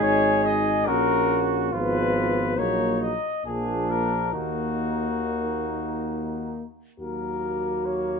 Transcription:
Already playing: G#3 D#4 G#4
0.02 G#1 C#5
0.45 D#5
0.86 A#1 A#3 C#4 F#4 A#4
1.73 G#1 F3 B3 F4 B4
2.57 A#1 F#3 A#3 D#4 C#5
3.02 D#5
3.44 A#1 F3 A#3 D4 G#4
3.90 A#4
4.32 D#2 D#3 A#3 D#4 F#4
6.99 D#2 F#3 A#3 F#4 A#4
7.86 C#5

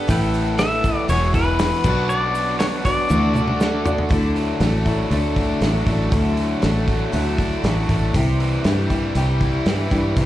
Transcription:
Already playing: B3 B4
0.08 A1 A2 E3 A3 B3 E4 G4 A4 B4 A5 E6, kick, open hi-hat, shaker
0.34 open hi-hat, shaker
0.58 E3 B3 E4 A4 E5, snare, open hi-hat, shaker
0.84 B3 E4 A4, kick, open hi-hat, shaker
1.08 E1 E2 B2 E3 F#3 G#3 B3 E4 G#4 C#5 F#5, open hi-hat, shaker
1.33 F#3 B3 E4 G#4 B4, kick, open hi-hat, shaker
1.59 snare, open hi-hat, shaker
1.84 B1 B2 F#3 B3 D4 F#4 B4 D5 C#6, kick, crash, shaker
2.09 D5, shaker
2.35 open hi-hat, shaker
2.59 B3 D4 F#4 C#5, snare, open hi-hat, shaker
2.85 B3 D4 F#4 C#5 D5, kick, open hi-hat, shaker
3.09 D2 D3 E3 A3 D4 F#4 D5 F#5 E6, high tom, shaker
3.34 A3 D4 F#4 D5, mid tom, shaker
3.48 mid tom
3.60 snare, shaker
3.85 A3 D4 F#4 D5, floor tom, shaker
3.98 floor tom
4.09 D2 D3 F#3 A3 D4 E4, kick, open hi-hat
4.36 F#3, open hi-hat
4.60 A1 F#3 A3 D4 E4, snare, open hi-hat
4.85 F#3 A3 D4 E4, kick, open hi-hat
5.11 D2 D3 F#3 A3 D4 E4, open hi-hat
5.36 D4, kick, open hi-hat
5.60 A1 F#3 A3 D4 E4, snare, open hi-hat
5.86 A1 A3 D4 E4, kick, open hi-hat
6.12 D2 D3 F#3 A3 D4 E4, kick, open hi-hat
6.37 F#3, open hi-hat
6.62 A1 F#3 A3 D4 E4, snare, open hi-hat
6.88 F#3, kick, open hi-hat
7.12 D2 D3 F#3 A3 D4 E4, open hi-hat
7.38 D4, kick, open hi-hat
7.64 A1 F#3 A3 D4 E4, snare, open hi-hat
7.89 A1 A3, kick, open hi-hat
8.14 C2 C3 E3 G3 E4 G4, kick, open hi-hat
8.40 E3, open hi-hat
8.64 G2 E3 G3 E4 G4, snare, open hi-hat
8.90 E3 G3 E4 G4, kick, open hi-hat
9.15 C2 C3 E3 G3 E4 G4, open hi-hat
9.41 E4, kick, open hi-hat
9.66 G2 E3 G3 E4 G4, snare, open hi-hat
9.91 G2 G3 E4 G4, kick, open hi-hat
10.16 C2 C3 E3 G3 E4 G4, kick, open hi-hat

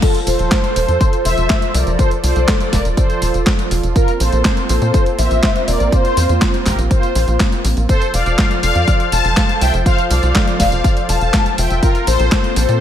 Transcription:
0.02 F3 F4 A4 C5, kick, closed hi-hat, crash, tambourine
0.15 closed hi-hat, tambourine
0.27 F1 A4 C5, open hi-hat, tambourine
0.39 F1, closed hi-hat, tambourine
0.51 kick, snare, clap, closed hi-hat, tambourine
0.64 closed hi-hat, tambourine
0.76 F1 A4 C5, open hi-hat, tambourine
0.88 F2, closed hi-hat, tambourine
1.01 kick, closed hi-hat, tambourine
1.13 closed hi-hat, tambourine
1.25 F1 C5 E5, open hi-hat, tambourine
1.37 F1, closed hi-hat, tambourine
1.50 kick, snare, clap, closed hi-hat, tambourine
1.62 closed hi-hat, tambourine
1.74 C2 A#4 D5, open hi-hat, tambourine
1.87 F1, closed hi-hat, tambourine
1.99 A4 C5 D5, kick, closed hi-hat, tambourine
2.11 closed hi-hat, tambourine
2.24 C2 A4 C5, open hi-hat, tambourine
2.36 C2, closed hi-hat, tambourine
2.48 kick, snare, clap, closed hi-hat, tambourine
2.61 closed hi-hat, tambourine
2.73 F1 A#4 D5, kick, snare, open hi-hat, tambourine
2.85 F1, closed hi-hat, tambourine
2.97 A4 C5, kick, closed hi-hat, tambourine
3.10 closed hi-hat, tambourine
3.22 F1, open hi-hat, tambourine
3.34 F1, closed hi-hat, tambourine
3.47 kick, snare, clap, closed hi-hat, tambourine
3.59 closed hi-hat, tambourine
3.71 F1, open hi-hat, tambourine
3.83 F1, closed hi-hat, tambourine
3.95 A#3 C4 F4 A#4, kick, closed hi-hat, tambourine
4.08 closed hi-hat, tambourine
4.20 A#1 A4 C5, open hi-hat, tambourine
4.32 A#1, closed hi-hat, tambourine
4.45 kick, snare, clap, closed hi-hat, tambourine
4.57 closed hi-hat, tambourine
4.69 A#1 A4 C5, open hi-hat, tambourine
4.82 A#2, closed hi-hat, tambourine
4.94 kick, closed hi-hat, tambourine
5.06 closed hi-hat, tambourine
5.19 A#1 C5 E5, open hi-hat, tambourine
5.31 A#1, closed hi-hat, tambourine
5.43 kick, snare, clap, closed hi-hat, tambourine
5.56 closed hi-hat, tambourine
5.68 F1 A#4 D5, open hi-hat, tambourine
5.80 A#1, closed hi-hat, tambourine
5.92 F4 C5, kick, closed hi-hat, tambourine
6.05 closed hi-hat, tambourine
6.17 F2, open hi-hat, tambourine
6.29 F2, closed hi-hat, tambourine
6.42 kick, snare, clap, closed hi-hat, tambourine
6.54 closed hi-hat, tambourine
6.66 A#1 G4 A#4, kick, snare, clap, open hi-hat, tambourine
6.78 A#1, closed hi-hat, tambourine
6.91 F4 C5, kick, closed hi-hat, tambourine
7.03 closed hi-hat, tambourine
7.15 A#1, open hi-hat, tambourine
7.28 A#1, closed hi-hat, tambourine
7.40 kick, snare, clap, closed hi-hat, tambourine
7.52 closed hi-hat, tambourine
7.65 A#1, open hi-hat, tambourine
7.77 A#1, closed hi-hat, tambourine
7.89 F3 F4 A4 C5, kick, closed hi-hat, tambourine
8.02 closed hi-hat, tambourine
8.14 F1 D5 F5, open hi-hat, tambourine
8.26 F1, closed hi-hat, tambourine
8.38 kick, snare, clap, closed hi-hat, tambourine
8.51 closed hi-hat, tambourine
8.63 F1 D5 F5, open hi-hat, tambourine
8.75 F2, closed hi-hat, tambourine
8.88 kick, closed hi-hat, tambourine
9.00 closed hi-hat, tambourine
9.12 F1 F5 A5, open hi-hat, tambourine
9.24 F1, closed hi-hat, tambourine
9.37 kick, snare, clap, closed hi-hat, tambourine
9.49 closed hi-hat, tambourine
9.61 C2 E5 G5, open hi-hat, tambourine
9.74 F1, closed hi-hat, tambourine
9.86 C5 F5, kick, closed hi-hat, tambourine
9.98 closed hi-hat, tambourine
10.11 C2 D5 F5, open hi-hat, tambourine
10.23 C2, closed hi-hat, tambourine
10.35 kick, snare, clap, closed hi-hat, tambourine
10.48 closed hi-hat, tambourine
10.60 F1 D5 F5, kick, snare, open hi-hat, tambourine
10.72 F1, closed hi-hat, tambourine
10.84 kick, closed hi-hat, tambourine
10.97 closed hi-hat, tambourine
11.09 F1 F5 A5, open hi-hat, tambourine
11.21 F1, closed hi-hat, tambourine
11.33 kick, snare, clap, closed hi-hat, tambourine
11.46 closed hi-hat, tambourine
11.58 F1 E5 G5, open hi-hat, tambourine
11.70 F1, closed hi-hat, tambourine
11.83 A#3 C4 F4 A#4, kick, closed hi-hat, tambourine
11.95 closed hi-hat, tambourine
12.07 A#1 A4 C5, open hi-hat, tambourine
12.20 A#1, closed hi-hat, tambourine
12.32 kick, snare, clap, closed hi-hat, tambourine
12.44 closed hi-hat, tambourine
12.56 A#1 A4 C5, open hi-hat, tambourine
12.69 A#2, closed hi-hat, tambourine

